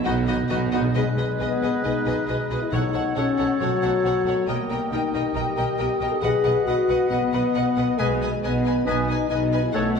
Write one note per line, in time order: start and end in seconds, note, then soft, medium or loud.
0.00 0.88 B2 medium
0.00 0.90 F#3 medium
0.00 0.20 F#3 medium
0.00 2.69 D#4 medium
0.00 1.16 B4 medium
0.04 0.45 B1 medium
0.04 0.45 B2 medium
0.04 0.12 B2 soft
0.04 0.12 B3 medium
0.04 0.20 D#4 medium
0.04 0.15 D#4 medium
0.04 0.13 F#4 medium
0.04 0.16 B4 medium
0.04 0.13 D#5 medium
0.04 0.10 F#5 medium
0.13 0.20 B2 soft
0.22 0.27 B2 soft
0.27 0.36 B2 medium
0.27 0.35 B3 medium
0.27 0.39 D#4 medium
0.27 0.36 F#4 medium
0.27 0.38 B4 medium
0.27 0.35 D#5 medium
0.27 0.33 F#5 medium
0.37 0.42 B2 medium
0.43 0.50 B2 medium
0.49 0.89 B1 medium
0.49 0.90 B1 medium
0.49 0.89 B2 medium
0.49 0.58 B2 medium
0.49 0.57 B3 medium
0.49 0.60 D#4 medium
0.49 0.58 F#4 medium
0.49 0.61 B4 medium
0.49 0.57 D#5 medium
0.49 0.55 F#5 medium
0.59 0.66 B2 medium
0.67 0.73 B2 medium
0.72 0.81 B2 loud
0.72 0.80 B3 medium
0.72 0.85 D#4 medium
0.72 0.80 F#4 medium
0.72 0.84 B4 medium
0.72 0.80 D#5 medium
0.72 0.79 F#5 medium
0.82 0.89 B2 loud
0.94 1.02 B1 medium
0.94 1.02 B2 medium
0.94 1.83 B2 medium
0.94 1.58 B2 medium
0.94 1.36 G#3 medium
0.94 1.03 G#4 medium
0.94 2.68 G#4 medium
0.94 1.03 B4 medium
0.94 2.68 B4 medium
0.94 2.41 D#5 medium
0.94 1.03 D#5 medium
1.07 1.94 G#3 soft
1.17 1.26 B1 medium
1.17 1.25 B2 medium
1.17 1.26 G#4 medium
1.17 1.72 B4 soft
1.17 1.26 B4 soft
1.17 1.25 D#5 medium
1.29 1.49 D#5 medium
1.39 1.48 B1 medium
1.39 1.47 B2 medium
1.39 1.83 B3 medium
1.39 1.48 G#4 medium
1.39 1.47 B4 medium
1.39 1.49 D#5 soft
1.39 2.27 B5 medium
1.50 2.16 D#5 soft
1.62 1.71 B1 medium
1.62 1.70 B2 medium
1.62 1.70 G#4 medium
1.62 1.70 B4 soft
1.62 1.70 D#5 soft
1.73 2.05 B4 soft
1.83 1.92 B1 medium
1.83 1.92 B2 medium
1.83 2.71 B2 medium
1.83 2.26 D#4 medium
1.83 1.92 G#4 medium
1.83 1.92 B4 medium
1.83 1.93 D#5 soft
2.05 2.14 B1 medium
2.05 2.14 B2 medium
2.05 2.13 G#4 medium
2.05 2.14 B4 medium
2.05 2.60 B4 soft
2.05 2.15 D#5 medium
2.27 2.36 B1 medium
2.27 2.36 B2 medium
2.27 2.60 D#4 medium
2.27 2.36 G#4 medium
2.27 2.36 B4 medium
2.27 2.36 D#5 medium
2.27 2.74 B5 soft
2.39 2.74 D#5 soft
2.50 2.58 B1 medium
2.50 2.59 B2 medium
2.50 2.58 G#4 medium
2.50 2.74 G#4 medium
2.50 2.59 B4 soft
2.50 2.59 D#5 soft
2.60 2.71 E4 medium
2.60 2.74 B4 soft
2.70 2.81 B1 medium
2.70 3.59 B2 medium
2.70 3.34 B2 medium
2.70 2.81 B2 medium
2.70 3.14 D#4 medium
2.70 4.44 A4 medium
2.70 2.81 A4 soft
2.70 2.81 C#5 medium
2.70 4.45 C#5 medium
2.70 4.47 F#5 medium
2.70 2.81 F#5 medium
2.83 3.71 A3 soft
2.94 3.03 B1 medium
2.94 3.03 B2 medium
2.94 3.49 F#4 soft
2.94 3.02 A4 soft
2.94 3.02 C#5 soft
2.94 3.02 F#5 soft
3.16 3.25 B1 medium
3.16 3.24 B2 medium
3.16 3.59 C#4 medium
3.16 3.24 A4 medium
3.16 3.24 C#5 medium
3.16 3.24 F#5 medium
3.16 4.03 F#5 medium
3.38 3.47 B1 medium
3.38 3.46 B2 medium
3.38 3.46 A4 medium
3.38 4.25 A4 soft
3.38 3.46 C#5 soft
3.38 3.48 F#5 soft
3.50 3.82 F#4 medium
3.60 3.69 B1 medium
3.60 4.47 B2 medium
3.60 3.68 B2 medium
3.60 4.46 F#3 medium
3.60 3.69 A4 soft
3.60 3.70 C#5 medium
3.60 3.70 F#5 medium
3.72 4.50 A3 soft
3.82 3.92 B1 medium
3.82 3.90 B2 medium
3.82 4.36 F#4 soft
3.82 3.90 A4 medium
3.82 3.92 C#5 soft
3.82 3.90 F#5 medium
4.04 4.13 B1 soft
4.04 4.12 B2 medium
4.04 4.13 A4 medium
4.04 4.13 C#5 soft
4.04 4.50 F#5 medium
4.04 4.13 F#5 soft
4.25 4.34 B1 medium
4.25 4.34 B2 medium
4.25 4.33 A4 soft
4.25 4.50 A4 medium
4.25 4.35 C#5 medium
4.25 4.35 F#5 soft
4.37 4.50 F#4 soft
4.47 4.56 B1 medium
4.47 4.56 B2 medium
4.47 5.34 B2 medium
4.47 4.92 A#3 medium
4.47 4.56 A#4 medium
4.47 6.21 A#4 medium
4.47 4.55 D#5 medium
4.47 7.95 D#5 medium
4.47 6.23 G5 medium
4.47 4.57 G5 medium
4.59 5.45 G3 soft
4.69 4.77 B1 medium
4.69 4.78 B2 medium
4.69 5.13 G4 soft
4.69 4.78 A#4 soft
4.69 4.79 D#5 soft
4.69 4.79 G5 medium
4.81 5.02 D#5 soft
4.91 4.99 B1 medium
4.91 4.99 B2 medium
4.91 5.36 D#4 medium
4.91 5.00 A#4 medium
4.91 5.00 D#5 medium
4.91 5.78 G5 medium
4.91 5.01 G5 medium
5.13 5.21 B1 medium
5.13 5.21 B2 medium
5.13 5.56 G4 soft
5.13 5.22 A#4 soft
5.13 5.22 D#5 medium
5.13 5.22 G5 soft
5.25 6.11 D#4 medium
5.35 5.44 B1 medium
5.35 6.23 B2 soft
5.35 5.44 B2 medium
5.35 5.79 G4 medium
5.35 5.43 A#4 medium
5.35 5.44 D#5 medium
5.35 5.45 G5 medium
5.46 6.25 G3 soft
5.57 5.65 B1 medium
5.57 5.66 B2 medium
5.57 6.00 G4 soft
5.57 5.65 A#4 medium
5.57 5.66 D#5 medium
5.57 5.66 G5 medium
5.68 5.89 D#5 soft
5.78 5.88 B1 medium
5.78 5.87 B2 medium
5.78 6.12 G4 medium
5.78 5.87 A#4 medium
5.78 5.88 D#5 medium
5.78 5.86 G5 medium
5.91 6.55 D#5 medium
6.00 6.08 B1 medium
6.00 6.10 B2 medium
6.00 6.25 G4 medium
6.00 6.10 A#4 medium
6.00 6.09 D#5 medium
6.00 6.10 G5 soft
6.11 9.75 D#4 soft
6.11 6.17 A4 medium
6.21 6.30 B1 medium
6.21 6.31 B2 medium
6.21 6.85 B2 medium
6.21 7.98 B2 medium
6.21 6.65 G#4 medium
6.21 6.30 B4 medium
6.21 7.82 B4 medium
6.21 6.32 D#5 medium
6.21 6.31 F#5 medium
6.34 7.21 B3 soft
6.44 6.52 B1 medium
6.44 6.54 B2 medium
6.44 6.99 F#4 medium
6.44 6.53 B4 medium
6.44 6.54 D#5 soft
6.44 6.52 F#5 medium
6.56 6.77 D#5 medium
6.65 6.74 B1 medium
6.65 6.75 B2 medium
6.65 7.10 F#4 medium
6.65 6.75 B4 medium
6.65 7.54 F#5 medium
6.65 6.76 F#5 medium
6.69 6.77 D#5 medium
6.79 7.42 D#5 medium
6.89 6.97 B1 medium
6.89 6.98 B2 medium
6.89 7.76 B4 soft
6.89 6.97 B4 medium
6.89 6.99 D#5 medium
6.89 6.97 F#5 soft
7.00 7.32 F#4 medium
7.10 7.18 B1 medium
7.10 7.19 B2 medium
7.10 8.01 F#3 soft
7.10 7.96 B3 loud
7.10 7.19 B4 medium
7.10 7.21 D#5 medium
7.10 7.18 F#5 soft
7.32 7.40 B1 medium
7.32 7.41 B2 medium
7.32 7.41 B4 medium
7.32 7.42 D#5 medium
7.32 7.41 F#5 medium
7.44 7.64 D#5 medium
7.55 7.64 B1 medium
7.55 7.63 B2 medium
7.55 7.63 B4 medium
7.55 7.64 D#5 medium
7.55 7.63 F#5 soft
7.55 8.00 F#5 soft
7.66 8.30 D#5 medium
7.76 7.84 B1 medium
7.76 7.84 B2 medium
7.76 8.63 B4 medium
7.76 7.85 B4 medium
7.76 7.86 D#5 medium
7.76 7.84 F#5 medium
7.88 8.00 F#4 medium
7.98 8.37 B1 medium
7.98 8.37 B2 medium
7.98 8.85 B2 medium
7.98 8.30 G#3 medium
7.98 8.14 B4 medium
7.98 8.08 B4 medium
7.98 8.14 D#5 medium
7.98 8.07 D#5 medium
7.98 8.06 G#5 medium
7.98 8.20 G#5 medium
8.10 8.96 B3 medium
8.20 8.74 G#4 soft
8.20 8.31 B4 medium
8.20 8.30 D#5 medium
8.20 8.29 G#5 medium
8.31 8.52 D#5 medium
8.43 8.81 B1 medium
8.43 8.81 B2 medium
8.43 8.86 B3 medium
8.43 8.52 B4 medium
8.43 8.52 D#5 medium
8.43 9.28 G#5 medium
8.43 8.52 G#5 medium
8.53 9.18 D#5 medium
8.64 9.50 B4 soft
8.64 8.74 B4 medium
8.64 8.72 D#5 medium
8.64 8.74 G#5 medium
8.75 9.07 G#4 medium
8.86 9.25 B1 medium
8.86 9.24 B2 medium
8.86 9.72 B2 medium
8.86 9.29 D#4 loud
8.86 9.02 B4 medium
8.86 8.95 B4 medium
8.86 8.94 D#5 medium
8.86 9.01 D#5 medium
8.86 9.06 G#5 medium
8.86 8.97 G#5 medium
8.97 9.75 B3 soft
9.08 9.61 G#4 medium
9.08 9.18 B4 medium
9.08 9.16 D#5 medium
9.08 9.19 G#5 medium
9.19 9.40 D#5 medium
9.29 9.69 B1 medium
9.29 9.68 B2 medium
9.29 9.62 D#4 medium
9.29 9.39 B4 medium
9.29 9.39 D#5 medium
9.29 9.75 G#5 medium
9.29 9.38 G#5 medium
9.41 9.76 D#5 medium
9.51 9.75 B4 medium
9.51 9.61 B4 medium
9.51 9.61 D#5 medium
9.51 9.61 G#5 medium
9.62 9.74 E4 medium
9.62 9.75 G#4 medium
9.72 10.00 B1 medium
9.72 10.00 B2 medium
9.72 10.00 A3 medium
9.72 9.89 A4 medium
9.72 9.83 A4 medium
9.72 9.82 C#5 medium
9.72 9.90 C#5 medium
9.72 9.80 F#5 medium
9.72 9.94 F#5 medium
9.84 10.00 A3 soft
9.95 10.00 F#4 medium
9.95 10.00 A4 medium
9.95 10.00 C#5 medium
9.95 10.00 F#5 medium